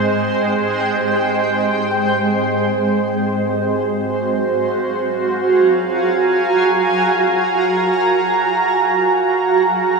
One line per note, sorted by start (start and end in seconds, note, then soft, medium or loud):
0.00 3.40 G#3 medium
0.00 6.11 G#4 medium
0.00 5.26 C5 medium
0.00 3.39 G5 medium
3.41 10.00 F#4 medium
4.05 10.00 F5 medium
4.23 10.00 G#5 medium
5.29 10.00 A#5 medium